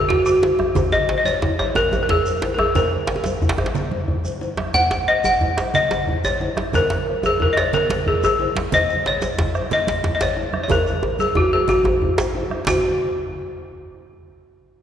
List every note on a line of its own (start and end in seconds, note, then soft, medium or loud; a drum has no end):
0.00 0.10 G#4 medium
0.09 0.25 F#4 medium
0.09 bombo low loud
0.09 djembe slap soft
0.09 djembe slap medium
0.09 djembe bass medium
0.26 0.61 F#4 medium
0.26 cowbell medium
0.26 shekere medium
0.42 bombo rim soft
0.42 cowbell medium
0.42 djembe slap medium
0.42 djembe tone medium
0.42 high conga soft
0.59 bombo rim medium
0.59 high conga medium
0.59 djembe tone medium
0.75 bombo rim soft
0.75 bombo low loud
0.75 cowbell medium
0.75 djembe slap medium
0.75 djembe tone loud
0.75 low conga medium
0.75 djembe bass medium
0.75 shekere medium
0.92 1.16 D#5 loud
0.92 djembe tone medium
0.92 shekere soft
1.09 cowbell medium
1.09 djembe slap medium
1.18 1.25 D#5 medium
1.25 1.58 C#5 loud
1.25 cowbell medium
1.25 djembe slap soft
1.25 high conga medium
1.25 shekere soft
1.42 bombo rim soft
1.42 bombo low loud
1.42 djembe slap medium
1.42 djembe tone medium
1.42 djembe bass medium
1.59 1.76 C#5 medium
1.59 bombo rim medium
1.59 cowbell medium
1.59 djembe tone medium
1.59 shekere soft
1.75 2.01 A#4 loud
1.75 djembe slap medium
1.75 djembe tone loud
1.75 low conga medium
1.75 shekere medium
1.92 bombo rim soft
1.92 cowbell medium
1.92 high conga medium
1.92 djembe tone medium
1.92 shekere soft
2.03 2.09 A#4 medium
2.09 2.57 G#4 medium
2.09 bombo low loud
2.09 djembe slap soft
2.09 djembe slap medium
2.09 djembe bass medium
2.26 cowbell medium
2.26 shekere soft
2.42 bombo rim soft
2.42 cowbell medium
2.42 djembe slap medium
2.42 djembe tone medium
2.42 high conga soft
2.54 2.59 A#4 medium
2.54 djembe tone medium
2.59 2.76 G#4 medium
2.59 bombo rim medium
2.59 high conga medium
2.75 3.72 A#4 medium
2.75 bombo low loud
2.75 cowbell medium
2.75 djembe slap medium
2.75 low conga medium
2.75 djembe bass medium
2.75 shekere medium
2.92 high conga soft
3.07 cowbell medium
3.07 djembe slap loud
3.16 djembe tone medium
3.24 bombo rim soft
3.24 cowbell medium
3.24 djembe slap medium
3.24 high conga medium
3.24 shekere soft
3.42 bombo low loud
3.42 djembe slap soft
3.42 djembe tone medium
3.42 djembe bass medium
3.42 shekere soft
3.49 djembe slap loud
3.58 bombo rim medium
3.58 cowbell medium
3.58 djembe slap soft
3.58 djembe tone medium
3.66 djembe slap medium
3.75 bombo rim soft
3.75 djembe slap medium
3.75 low conga medium
3.75 shekere medium
3.91 cowbell medium
3.91 high conga medium
4.08 bombo low medium
4.08 djembe slap soft
4.08 djembe bass medium
4.25 bombo rim soft
4.25 cowbell medium
4.25 high conga soft
4.25 shekere soft
4.41 cowbell medium
4.41 djembe slap soft
4.41 djembe tone medium
4.41 shekere soft
4.57 bombo rim medium
4.57 djembe slap medium
4.57 djembe slap soft
4.57 high conga medium
4.74 5.09 F#5 loud
4.74 bombo rim soft
4.74 bombo low loud
4.74 cowbell medium
4.74 djembe slap medium
4.74 low conga medium
4.74 djembe bass medium
4.74 shekere medium
4.91 djembe slap medium
4.91 shekere soft
5.08 5.16 D#5 loud
5.08 cowbell medium
5.24 5.56 F#5 loud
5.24 cowbell soft
5.24 djembe slap soft
5.24 high conga medium
5.24 djembe tone medium
5.24 shekere soft
5.41 bombo rim soft
5.41 bombo low loud
5.41 djembe tone medium
5.41 djembe bass medium
5.57 bombo rim medium
5.57 cowbell medium
5.57 djembe slap medium
5.57 shekere soft
5.74 6.26 D#5 loud
5.74 djembe slap medium
5.74 low conga medium
5.74 shekere medium
5.91 bombo rim soft
5.91 cowbell medium
5.91 djembe slap medium
5.91 high conga medium
5.91 shekere soft
6.07 bombo low medium
6.07 djembe slap soft
6.07 djembe bass medium
6.24 6.76 C#5 loud
6.24 cowbell medium
6.24 djembe tone medium
6.24 shekere soft
6.40 bombo rim soft
6.40 cowbell medium
6.40 high conga soft
6.40 djembe tone medium
6.57 bombo rim medium
6.57 djembe slap medium
6.57 high conga medium
6.73 7.26 A#4 loud
6.73 bombo rim soft
6.73 bombo low medium
6.73 cowbell medium
6.73 djembe slap medium
6.73 low conga medium
6.73 djembe bass medium
6.73 shekere medium
6.90 djembe slap medium
6.90 shekere soft
7.08 cowbell medium
7.23 7.42 G#4 medium
7.23 cowbell medium
7.23 djembe slap soft
7.23 high conga medium
7.23 djembe tone medium
7.23 shekere soft
7.40 7.54 A#4 medium
7.40 bombo rim soft
7.40 bombo low loud
7.40 djembe tone medium
7.40 djembe bass medium
7.53 7.57 D#5 medium
7.53 bombo rim medium
7.57 7.72 C#5 medium
7.57 cowbell medium
7.57 djembe slap medium
7.57 shekere soft
7.73 8.04 A#4 loud
7.73 djembe slap medium
7.73 low conga medium
7.73 shekere medium
7.90 bombo rim soft
7.90 cowbell medium
7.90 djembe slap medium
7.90 high conga medium
7.90 shekere soft
8.06 8.23 G#4 medium
8.06 bombo low medium
8.06 djembe slap soft
8.06 djembe bass medium
8.23 8.58 G#4 loud
8.23 cowbell medium
8.23 djembe tone medium
8.23 shekere medium
8.39 bombo rim soft
8.39 cowbell medium
8.39 high conga soft
8.39 djembe tone medium
8.56 djembe slap loud
8.56 high conga medium
8.72 9.04 D#5 loud
8.72 bombo rim soft
8.72 bombo low loud
8.72 cowbell medium
8.72 djembe slap medium
8.72 low conga medium
8.72 djembe bass medium
8.72 shekere medium
8.89 shekere soft
9.05 9.52 C#5 medium
9.05 cowbell medium
9.05 djembe slap medium
9.22 cowbell medium
9.22 djembe slap medium
9.22 djembe slap soft
9.22 high conga medium
9.22 shekere medium
9.39 bombo low loud
9.39 djembe slap loud
9.39 djembe tone medium
9.39 djembe bass medium
9.54 bombo rim medium
9.54 cowbell medium
9.54 shekere soft
9.71 10.14 D#5 loud
9.71 djembe slap medium
9.71 low conga medium
9.71 shekere medium
9.87 bombo rim soft
9.87 djembe slap medium
9.87 high conga medium
9.87 shekere soft
10.04 bombo low loud
10.04 djembe slap soft
10.04 djembe slap medium
10.04 djembe bass medium
10.15 10.21 D#5 medium
10.20 10.52 C#5 medium
10.20 cowbell medium
10.20 djembe slap loud
10.20 shekere medium
10.37 bombo rim soft
10.37 cowbell medium
10.37 djembe tone medium
10.53 bombo rim medium
10.53 high conga medium
10.63 10.70 C#5 medium
10.69 11.22 A#4 medium
10.69 bombo low loud
10.69 cowbell medium
10.69 djembe slap medium
10.69 djembe tone loud
10.69 low conga medium
10.69 djembe bass medium
10.69 shekere medium
10.86 bombo rim soft
10.86 djembe slap soft
10.86 high conga soft
10.86 shekere soft
11.03 cowbell medium
11.03 djembe tone loud
11.19 11.37 G#4 medium
11.19 cowbell medium
11.19 djembe slap soft
11.19 high conga medium
11.19 shekere soft
11.35 11.53 F#4 medium
11.35 bombo rim soft
11.35 bombo low loud
11.35 djembe slap soft
11.35 djembe tone loud
11.35 djembe tone medium
11.35 djembe bass medium
11.53 11.70 G#4 medium
11.53 cowbell medium
11.68 12.31 F#4 medium
11.68 djembe slap medium
11.68 djembe tone loud
11.68 low conga medium
11.68 shekere medium
11.84 cowbell medium
11.84 high conga medium
11.84 djembe tone loud
12.01 bombo low loud
12.01 high conga soft
12.01 djembe bass medium
12.18 cowbell medium
12.18 djembe slap loud
12.18 djembe slap soft
12.18 shekere soft
12.35 cowbell medium
12.35 djembe slap soft
12.35 djembe tone medium
12.50 bombo rim medium
12.50 high conga medium
12.67 12.83 F#4 medium
12.67 bombo low medium
12.67 cowbell medium
12.67 djembe slap loud
12.67 low conga medium
12.67 djembe bass medium
12.67 shekere medium